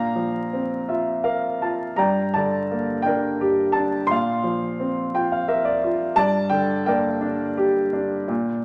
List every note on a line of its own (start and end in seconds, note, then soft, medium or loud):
0.00 1.95 A#2 medium
0.00 1.22 F5 medium
0.00 1.57 A#5 medium
0.15 1.57 F3 soft
0.53 1.95 C4 soft
0.88 1.60 F4 soft
0.88 1.23 E5 medium
1.24 1.96 A#4 soft
1.24 1.59 F5 medium
1.61 1.97 F4 soft
1.61 1.96 A5 medium
1.96 4.06 G2 soft
1.96 2.34 D5 medium
1.96 3.01 G5 medium
1.96 2.35 A#5 medium
2.34 3.72 D3 soft
2.34 3.05 D5 medium
2.34 3.02 A5 medium
2.71 4.06 A#3 soft
3.02 3.74 D4 soft
3.02 4.06 D5 medium
3.02 3.76 G5 medium
3.07 4.06 A#4 medium
3.41 4.08 G4 medium
3.72 4.09 D4 soft
3.72 4.06 A5 medium
4.07 6.12 A#2 medium
4.07 5.76 C6 loud
4.11 5.31 F5 medium
4.43 5.78 F3 soft
4.80 6.13 C4 soft
5.14 5.82 F4 soft
5.14 5.30 G5 medium
5.32 5.47 F5 medium
5.48 6.14 A#4 medium
5.48 5.64 E5 medium
5.65 6.13 D5 medium
5.83 6.16 F4 medium
6.16 8.24 G2 medium
6.16 6.87 D5 medium
6.16 6.52 A5 loud
6.49 7.88 D3 medium
6.49 6.85 G5 medium
6.86 8.25 A#3 soft
6.86 8.65 A#4 medium
6.86 8.65 D5 medium
6.86 8.65 G5 medium
7.21 7.91 D4 medium
7.57 8.27 G4 medium
7.93 8.28 D4 soft
8.28 8.65 A#2 medium